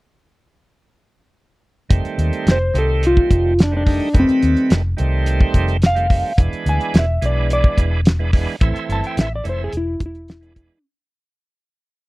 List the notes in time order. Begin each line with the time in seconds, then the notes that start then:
1.90 F1 D#3 G3 A3 C4, kick, closed hi-hat
2.05 muted fingered electric bass stroke, closed hi-hat
2.18 D#2, closed hi-hat
2.33 closed hi-hat
2.46 F1, snare, closed hi-hat
2.51 C5
2.74 C2 D#3 G3 A3 C4, closed hi-hat
2.78 A4
3.03 F4, closed hi-hat
3.17 kick
3.30 F1, kick, closed hi-hat
3.59 snare, closed hi-hat
3.63 D4
3.71 D#3 G3 A3 C4
3.77 D4
3.86 D#3 G3 A3 D#4, kick, open hi-hat
4.14 F1 D#3 G3 A3 B4, kick, closed hi-hat
4.19 C4
4.29 muted fingered electric bass stroke, closed hi-hat
4.42 D#2, closed hi-hat
4.57 closed hi-hat
4.70 F1, snare, closed hi-hat
4.97 C2 D#3 G3 A3 C4, closed hi-hat
5.26 closed hi-hat
5.40 kick
5.54 F1, kick, closed hi-hat
5.68 closed hi-hat
5.82 snare, closed hi-hat
5.86 F5
5.95 D#3 G3 A3 C4, closed hi-hat
6.10 D#3 G3 A3 C4, kick, open hi-hat
6.37 E1 E3 G#3 B3 D4, kick, closed hi-hat
6.53 closed hi-hat
6.66 D2 G#5, closed hi-hat
6.81 closed hi-hat
6.94 E1, snare, closed hi-hat
6.99 E5
7.22 B1 E3 G#3 B3 D4, closed hi-hat
7.26 D5
7.50 D5, closed hi-hat
7.64 kick
7.78 E1, kick, closed hi-hat
8.05 snare, closed hi-hat
8.19 E3 G#3 B3 D4
8.33 E3 G#3 B3 D4, kick, open hi-hat
8.61 A1 E3 A3 C4 E4, kick, closed hi-hat
8.76 closed hi-hat
8.89 G1 A5, closed hi-hat
9.04 G5, closed hi-hat
9.17 A1 E5, snare, closed hi-hat
9.36 D5
9.44 F1 E3 A3 C4 E4, closed hi-hat
9.49 C5
9.64 G#4
9.73 E1, closed hi-hat
9.77 E4
10.00 E1, kick, closed hi-hat
10.06 E4
10.15 closed hi-hat
10.28 snare, closed hi-hat
10.41 E3 G#3 B3 D4, closed hi-hat
10.55 E3 G#3 B3 D4, kick, closed hi-hat